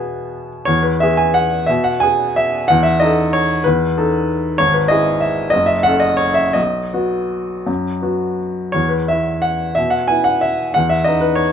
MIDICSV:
0, 0, Header, 1, 2, 480
1, 0, Start_track
1, 0, Key_signature, 4, "major"
1, 0, Tempo, 372208
1, 860, Time_signature, 3, 2, 24, 8
1, 860, Tempo, 340909
1, 3260, Tempo, 317628
1, 8540, Tempo, 361446
1, 11900, Tempo, 349243
1, 13340, Tempo, 323625
1, 16425, End_track
2, 0, Start_track
2, 0, Title_t, "Grand piano"
2, 0, Program_c, 0, 0
2, 0, Control_c, 0, 64, 127
2, 0, Note_on_c, 0, 47, 49
2, 0, Note_on_c, 0, 59, 38
2, 0, Note_on_c, 0, 68, 40
2, 0, Note_on_c, 0, 76, 55
2, 616, Note_off_c, 0, 76, 0
2, 815, Note_off_c, 0, 68, 0
2, 817, Note_off_c, 0, 59, 0
2, 843, Note_on_c, 0, 73, 89
2, 874, Note_on_c, 0, 40, 59
2, 892, Control_c, 0, 64, 0
2, 898, Note_off_c, 0, 47, 0
2, 1082, Note_on_c, 0, 71, 59
2, 1098, Note_off_c, 0, 73, 0
2, 1150, Control_c, 0, 64, 127
2, 1333, Note_on_c, 0, 76, 86
2, 1338, Note_off_c, 0, 71, 0
2, 1343, Note_off_c, 0, 40, 0
2, 1370, Note_on_c, 0, 59, 49
2, 1372, Note_on_c, 0, 68, 52
2, 1574, Note_on_c, 0, 80, 81
2, 1583, Note_off_c, 0, 76, 0
2, 1808, Note_on_c, 0, 78, 83
2, 1824, Note_off_c, 0, 80, 0
2, 2245, Note_off_c, 0, 59, 0
2, 2246, Note_off_c, 0, 68, 0
2, 2266, Note_on_c, 0, 76, 87
2, 2279, Note_off_c, 0, 78, 0
2, 2303, Note_on_c, 0, 47, 63
2, 2319, Control_c, 0, 64, 0
2, 2510, Note_on_c, 0, 78, 74
2, 2511, Note_off_c, 0, 76, 0
2, 2561, Control_c, 0, 64, 127
2, 2740, Note_on_c, 0, 80, 91
2, 2760, Note_off_c, 0, 47, 0
2, 2761, Note_off_c, 0, 78, 0
2, 2777, Note_on_c, 0, 59, 45
2, 2781, Note_on_c, 0, 68, 51
2, 3246, Note_off_c, 0, 80, 0
2, 3248, Note_on_c, 0, 76, 89
2, 3696, Note_off_c, 0, 59, 0
2, 3697, Note_off_c, 0, 68, 0
2, 3726, Note_on_c, 0, 78, 97
2, 3744, Note_off_c, 0, 76, 0
2, 3760, Note_on_c, 0, 40, 67
2, 3776, Control_c, 0, 64, 0
2, 3952, Note_on_c, 0, 76, 80
2, 3967, Control_c, 0, 64, 127
2, 3972, Note_off_c, 0, 78, 0
2, 4206, Note_on_c, 0, 75, 88
2, 4212, Note_off_c, 0, 76, 0
2, 4219, Note_off_c, 0, 40, 0
2, 4238, Note_on_c, 0, 63, 48
2, 4248, Note_on_c, 0, 69, 51
2, 4710, Note_on_c, 0, 73, 85
2, 4719, Note_off_c, 0, 75, 0
2, 5142, Note_off_c, 0, 63, 0
2, 5147, Note_off_c, 0, 69, 0
2, 5174, Note_on_c, 0, 71, 84
2, 5188, Note_off_c, 0, 73, 0
2, 5212, Note_on_c, 0, 40, 60
2, 5223, Control_c, 0, 64, 0
2, 5469, Control_c, 0, 64, 127
2, 5654, Note_off_c, 0, 40, 0
2, 5682, Note_on_c, 0, 69, 54
2, 5687, Note_on_c, 0, 63, 48
2, 6383, Note_off_c, 0, 71, 0
2, 6580, Note_off_c, 0, 69, 0
2, 6583, Note_off_c, 0, 63, 0
2, 6600, Note_on_c, 0, 73, 101
2, 6624, Note_on_c, 0, 32, 59
2, 6656, Control_c, 0, 64, 0
2, 6828, Note_on_c, 0, 71, 62
2, 6844, Note_off_c, 0, 73, 0
2, 6896, Control_c, 0, 64, 127
2, 7057, Note_on_c, 0, 75, 97
2, 7076, Note_off_c, 0, 32, 0
2, 7077, Note_off_c, 0, 71, 0
2, 7094, Note_on_c, 0, 68, 54
2, 7096, Note_on_c, 0, 64, 51
2, 7542, Note_on_c, 0, 76, 71
2, 7566, Note_off_c, 0, 75, 0
2, 7991, Note_on_c, 0, 75, 98
2, 7999, Note_off_c, 0, 68, 0
2, 8000, Note_off_c, 0, 64, 0
2, 8032, Note_on_c, 0, 30, 64
2, 8037, Note_off_c, 0, 76, 0
2, 8081, Control_c, 0, 64, 0
2, 8231, Note_on_c, 0, 76, 80
2, 8261, Note_off_c, 0, 75, 0
2, 8313, Control_c, 0, 64, 127
2, 8490, Note_on_c, 0, 78, 98
2, 8508, Note_off_c, 0, 76, 0
2, 8512, Note_off_c, 0, 30, 0
2, 8530, Note_on_c, 0, 61, 44
2, 8541, Note_on_c, 0, 69, 46
2, 8715, Note_on_c, 0, 75, 81
2, 8742, Note_off_c, 0, 78, 0
2, 8942, Note_on_c, 0, 73, 79
2, 8973, Note_off_c, 0, 75, 0
2, 9173, Note_on_c, 0, 76, 81
2, 9209, Note_off_c, 0, 73, 0
2, 9420, Note_off_c, 0, 61, 0
2, 9424, Note_off_c, 0, 69, 0
2, 9427, Note_on_c, 0, 75, 79
2, 9445, Note_off_c, 0, 76, 0
2, 9457, Note_on_c, 0, 35, 51
2, 9501, Control_c, 0, 64, 0
2, 9788, Control_c, 0, 64, 127
2, 9946, Note_off_c, 0, 35, 0
2, 9957, Note_on_c, 0, 59, 39
2, 9965, Note_on_c, 0, 66, 43
2, 10882, Note_off_c, 0, 59, 0
2, 10886, Note_off_c, 0, 66, 0
2, 10930, Note_on_c, 0, 42, 51
2, 10967, Control_c, 0, 64, 0
2, 11182, Control_c, 0, 64, 127
2, 11393, Note_off_c, 0, 42, 0
2, 11400, Note_on_c, 0, 59, 37
2, 11411, Note_on_c, 0, 66, 40
2, 11875, Note_off_c, 0, 75, 0
2, 12327, Note_off_c, 0, 59, 0
2, 12332, Note_off_c, 0, 66, 0
2, 12349, Note_on_c, 0, 73, 79
2, 12381, Note_on_c, 0, 40, 51
2, 12417, Control_c, 0, 64, 0
2, 12578, Note_on_c, 0, 71, 50
2, 12603, Note_off_c, 0, 73, 0
2, 12662, Control_c, 0, 64, 127
2, 12840, Note_off_c, 0, 71, 0
2, 12844, Note_off_c, 0, 40, 0
2, 12846, Note_on_c, 0, 76, 75
2, 12877, Note_on_c, 0, 64, 46
2, 12878, Note_on_c, 0, 59, 37
2, 13304, Note_on_c, 0, 78, 75
2, 13332, Note_off_c, 0, 76, 0
2, 13780, Note_off_c, 0, 64, 0
2, 13781, Note_off_c, 0, 59, 0
2, 13794, Note_on_c, 0, 76, 81
2, 13812, Note_off_c, 0, 78, 0
2, 13830, Note_on_c, 0, 47, 47
2, 13859, Control_c, 0, 64, 0
2, 14022, Note_on_c, 0, 78, 69
2, 14053, Note_off_c, 0, 76, 0
2, 14079, Control_c, 0, 64, 127
2, 14279, Note_on_c, 0, 80, 87
2, 14291, Note_off_c, 0, 78, 0
2, 14301, Note_off_c, 0, 47, 0
2, 14309, Note_on_c, 0, 59, 40
2, 14321, Note_on_c, 0, 64, 44
2, 14523, Note_on_c, 0, 78, 75
2, 14546, Note_off_c, 0, 80, 0
2, 14777, Note_on_c, 0, 76, 73
2, 14796, Note_off_c, 0, 78, 0
2, 15232, Note_off_c, 0, 59, 0
2, 15239, Note_off_c, 0, 64, 0
2, 15264, Note_on_c, 0, 78, 84
2, 15275, Note_off_c, 0, 76, 0
2, 15297, Note_on_c, 0, 40, 53
2, 15324, Control_c, 0, 64, 0
2, 15493, Note_on_c, 0, 76, 72
2, 15507, Note_off_c, 0, 78, 0
2, 15529, Control_c, 0, 64, 127
2, 15716, Note_on_c, 0, 75, 81
2, 15737, Note_off_c, 0, 76, 0
2, 15740, Note_off_c, 0, 40, 0
2, 15757, Note_on_c, 0, 59, 42
2, 15764, Note_on_c, 0, 63, 45
2, 15955, Note_on_c, 0, 71, 78
2, 15967, Note_off_c, 0, 75, 0
2, 16175, Note_on_c, 0, 73, 77
2, 16208, Note_off_c, 0, 71, 0
2, 16425, Note_off_c, 0, 59, 0
2, 16425, Note_off_c, 0, 63, 0
2, 16425, Note_off_c, 0, 73, 0
2, 16425, End_track
0, 0, End_of_file